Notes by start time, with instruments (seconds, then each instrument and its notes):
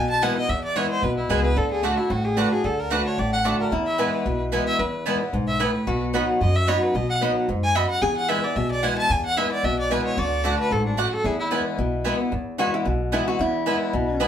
Already playing: upright bass B1, steel-string acoustic guitar B2
0.10 fiddle A5
0.22 steel-string acoustic guitar E3 G#3 B3 E4, mandolin B3 E4 B4 G#5, fiddle F#5
0.37 steel-string acoustic guitar B3 E4, fiddle D#5
0.49 upright bass E2, steel-string acoustic guitar E2, fiddle E5
0.64 fiddle D5
0.75 steel-string acoustic guitar E3 G#3 B3 E4, mandolin B3 E4 B4 G#5, fiddle C#5
0.91 fiddle C5
1.02 upright bass B1, steel-string acoustic guitar B2, fiddle B4
1.17 fiddle E4
1.29 upright bass C#2, steel-string acoustic guitar E3 G#3 B3 E4, mandolin B3 E4 B4 G#5, fiddle G#4
1.44 steel-string acoustic guitar B3 E4, fiddle B4
1.56 upright bass D2, steel-string acoustic guitar D3, fiddle A4
1.71 fiddle G#4
1.82 steel-string acoustic guitar D3 A3 D4 F#4, mandolin A3 F#4 D5 F#5, fiddle F#4
1.97 steel-string acoustic guitar D4 F#4, fiddle E4
2.10 upright bass A1, steel-string acoustic guitar A2, fiddle F#4
2.25 fiddle G#4
2.37 steel-string acoustic guitar D3 A3 D4 F#4, mandolin A3 F#4 D5 F#5, fiddle B4
2.51 steel-string acoustic guitar D4 F#4, fiddle G#4
2.64 upright bass D2, steel-string acoustic guitar D3, fiddle A4
2.80 fiddle A#4
2.90 steel-string acoustic guitar D3 A3 D4 F#4, mandolin A3 F#4 D5 F#5, fiddle B4
3.07 fiddle C#5
3.18 upright bass A1, steel-string acoustic guitar A2, fiddle D5
3.33 fiddle F#5
3.44 steel-string acoustic guitar D3 A3 D4 F#4, mandolin A3 F#4 D5 F#5
3.60 fiddle A#4
3.71 upright bass E2, steel-string acoustic guitar E2, resonator guitar played with a steel bar E4
3.86 fiddle E5
3.98 steel-string acoustic guitar E3 G#3 B3 E4, mandolin B3 E4 B4 G#5, fiddle B4
4.26 upright bass B1, steel-string acoustic guitar B2
4.52 steel-string acoustic guitar E3 G#3 B3 E4, mandolin B3 E4 B4 G#5
4.67 fiddle E5
4.79 upright bass E2, steel-string acoustic guitar E2, fiddle B4
5.06 steel-string acoustic guitar E3 G#3 B3 E4, mandolin B3 E4 B4 G#5
5.21 steel-string acoustic guitar B3 E4
5.33 upright bass B1, steel-string acoustic guitar G#2
5.48 fiddle E5
5.60 steel-string acoustic guitar A2, mandolin B3 E4 B4 G#5, fiddle B4
5.87 upright bass B1, steel-string acoustic guitar B2, resonator guitar played with a steel bar F#4
6.13 steel-string acoustic guitar F#3 B3 D#4 F#4, mandolin B3 F#4 D#5 B5
6.41 upright bass F#2, steel-string acoustic guitar F#2, fiddle D#5
6.56 fiddle E5
6.67 steel-string acoustic guitar F#3 B3 D#4 F#4, mandolin B3 F#4 D#5 B5, fiddle C#5
6.83 fiddle B4
6.94 upright bass B1, steel-string acoustic guitar B2, fiddle D#5
7.10 fiddle F#5
7.21 steel-string acoustic guitar F#3 B3 D#4 F#4, mandolin B3 F#4 D#5 B5
7.48 upright bass F#2, steel-string acoustic guitar G#2
7.63 fiddle G#5
7.75 steel-string acoustic guitar F#2, mandolin B3 F#4 D#5 B5, fiddle E5
7.89 fiddle F#5
8.02 upright bass E2, steel-string acoustic guitar E2, resonator guitar played with a steel bar G#4, fiddle G#5
8.17 fiddle F#5
8.28 steel-string acoustic guitar E3 G#3 B3 E4, mandolin B3 E4 B4 G#5, fiddle E5
8.43 steel-string acoustic guitar B3 E4, fiddle D5
8.56 upright bass B1, steel-string acoustic guitar B2, fiddle E5
8.71 fiddle D5
8.83 steel-string acoustic guitar E3 G#3 B3 E4, mandolin B3 E4 B4 G#5, fiddle F#5
8.98 fiddle A5
9.09 upright bass E2, steel-string acoustic guitar E2, fiddle G#5
9.26 fiddle F#5
9.36 steel-string acoustic guitar E3 G#3 B3 E4, mandolin B3 E4 B4 G#5, fiddle E5
9.52 fiddle D5
9.63 upright bass B1, steel-string acoustic guitar B2, fiddle E5
9.79 fiddle D5
9.90 steel-string acoustic guitar E3 G#3 B3 E4, mandolin B3 E4 B4 G#5, fiddle B4
10.05 fiddle C#5
10.17 upright bass D2, steel-string acoustic guitar D3, resonator guitar played with a steel bar F#4, fiddle D5
10.44 steel-string acoustic guitar D3 A3 D4 F#4, mandolin A3 F#4 D5 F#5
10.59 fiddle B4
10.71 upright bass A1, steel-string acoustic guitar G#2, fiddle A4
10.86 fiddle D4
10.97 steel-string acoustic guitar F#2, mandolin A3 F#4 D5 F#5, fiddle F#4
11.13 fiddle A4
11.24 steel-string acoustic guitar E2, upright bass E2, resonator guitar played with a steel bar E4, fiddle G#4
11.39 fiddle E4
11.51 steel-string acoustic guitar E3 G#3 B3 E4, mandolin B3 E4 B4 G#5
11.78 upright bass B1, steel-string acoustic guitar B2
12.04 steel-string acoustic guitar E3 G#3 B3 E4, mandolin B3 E4 B4 G#5
12.20 steel-string acoustic guitar B3 E4
12.32 upright bass E2, steel-string acoustic guitar E2
12.58 steel-string acoustic guitar E3 G#3 B3 E4, mandolin B3 E4 B4 G#5, resonator guitar played with a steel bar F#4
12.74 resonator guitar played with a steel bar E4
12.85 upright bass B1, steel-string acoustic guitar B2
13.12 steel-string acoustic guitar E3 G#3 B3 E4, mandolin B3 E4 B4 G#5, resonator guitar played with a steel bar E4
13.28 resonator guitar played with a steel bar F#4
13.39 steel-string acoustic guitar E2, upright bass E2, resonator guitar played with a steel bar E4
13.66 steel-string acoustic guitar E3 G#3 B3 E4, mandolin B3 E4 B4 G#5
13.93 upright bass B1, steel-string acoustic guitar B2
14.20 steel-string acoustic guitar E3 G#3 B3 E4, mandolin B3 E4 B4 G#5